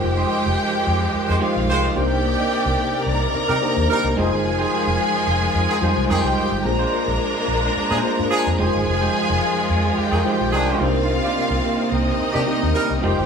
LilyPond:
<<
  \new Staff \with { instrumentName = "Violin section" } { \time 4/4 \key f \dorian \tempo 4 = 109 <g' g''>2~ <g' g''>8 <f' f''>4 <g' g''>8~ | <g' g''>4. <bes' bes''>2 <aes' aes''>8~ | <aes' aes''>2. <g' g''>4 | <bes' bes''>2.~ <bes' bes''>8 <aes' aes''>8~ |
<aes' aes''>2 <g' g''>4. <f' f''>8~ | <f' f''>4. <ees' ees''>2 <g' g''>8 | }
  \new Staff \with { instrumentName = "Tine electric piano" } { \time 4/4 \key f \dorian <aes ees' f' g' c''>4 r4. <aes ees' f' g' c''>4 <bes d' ees' g' c''>8~ | <bes d' ees' g' c''>4 r4. <bes d' ees' g' c''>4 <aes ees' f' aes' c''>8~ | <aes ees' f' aes' c''>4 r4. <g aes ees' f' g' c''>4 r8 | <bes d' f' aes' c''>4. r4 <bes d' f' aes' c''>4 <aes ees' f' aes' c''>8~ |
<aes ees' f' aes' c''>4 r4. <aes ees' f' g' c''>4 <bes d' ees' g' c''>8~ | <bes d' ees' g' c''>4 r4. <bes c' ees' g' bes'>4 <aes ees' f' g' c''>8 | }
  \new Staff \with { instrumentName = "Clean electric guitar" } { \time 4/4 \key f \dorian r16 <aes ees' g' c''>16 <aes ees' g' c''>16 r4. r16 <aes ees' g' c''>16 r8 <aes ees' g' c''>16 <bes ees' g' d''>16 r16 | r16 <bes ees' g' d''>16 <bes ees' g' d''>16 r4. <bes ees' g' d''>16 <bes ees' g' d''>16 r8. <aes ees' g' c''>16 r16 | r16 <aes ees' g' c''>16 <aes ees' g' c''>16 r4. r16 <aes ees' g' c''>16 r8 <aes ees' g' c''>16 <aes ees' g' c''>16 r16 | r16 <aes d' f' c''>16 <aes d' f' c''>16 r4. <aes d' f' c''>16 <aes d' f' c''>16 r8. <aes ees' g' c''>16 r16 |
r16 <aes ees' g' c''>16 <aes ees' g' c''>16 r4. r16 <aes ees' g' c''>16 r8 <aes ees' g' c''>16 <bes ees' g' d''>16 r16 | r16 <bes ees' g' d''>16 <bes ees' g' d''>16 r4. <bes ees' g' d''>16 <bes ees' g' d''>16 r8. <aes ees' g' c''>16 r16 | }
  \new Staff \with { instrumentName = "Horn section" } { \time 4/4 \key f \dorian r2 r16 <aes g' c''>16 r8 <aes g' c''>8 r8 | r2 r16 <g ees' bes'>16 r8 <g ees' bes'>8 r8 | r2 r16 <ees c' aes'>16 r8 <ees c' aes'>8 r8 | r2 r16 <f d' aes'>16 r8 <f d' aes'>8 r8 |
r2 r16 <ees c' aes'>16 r8 <ees d' aes'>8. r16 | r2 r16 <ees d' g'>16 r8 <g ees' bes'>8 r8 | }
  \new Staff \with { instrumentName = "String section" } { \clef bass \time 4/4 \key f \dorian <ees f aes g'>2.~ <ees f aes g'>8 <c bes d''>8~ | <c bes d''>2.~ <c bes d''>8 <f aes f'>8~ | <f aes f'>1 | <aes bes d'>2.~ <aes bes d'>8 <ees f aes f'>8~ |
<ees f aes f'>2.~ <ees f aes f'>8 <c bes c'>8~ | <c bes c'>2.~ <c bes c'>8 <f aes g'>8 | }
  \new Staff \with { instrumentName = "Fingered electric bass" } { \clef bass \time 4/4 \key f \dorian f,,8 r16 f,,16 r8 f,8 r16 f,16 r16 bes,,16 c,8 c,8~ | c,8 r16 c,16 r8 c,8 r16 c16 r16 ees,16 r16 c,16 f,,16 g,,16 | f,,8 r16 f,,16 r8 f,,8 f,16 r16 f,16 c,16 f,16 c,16 r16 aes,,16 | bes,,8 r16 bes,,16 r8 bes,,8 r16 bes,16 r16 aes,16 r16 f,16 f,,16 g,,16 |
f,,8 r16 f,,16 r8 f,8 r16 f,16 r16 bes,,16 c,8 c,8~ | c,8 r16 c,16 r8 c,8 r16 c16 r16 ees,16 r16 c,16 f,,16 g,,16 | }
>>